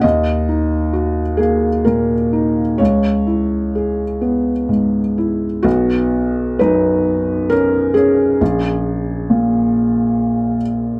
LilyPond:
<<
  \new Staff \with { instrumentName = "Felt piano" } { \time 3/4 \key b \major \tempo 4 = 66 dis''4. gis'8 ais'4 | cis''2 r4 | <b fis'>4 <dis' b'>4 <cis' ais'>8 <cis' gis'>8~ | <cis' gis'>2~ <cis' gis'>8 r8 | }
  \new Staff \with { instrumentName = "Felt piano" } { \clef bass \time 3/4 \key b \major dis,8 dis'8 fis'8 ais8 ais,8 dis'8 | cis,8 e'8 gis'8 b8 gis,8 e'8 | b,,4 fis,2 | ais,,4 ais,2 | }
>>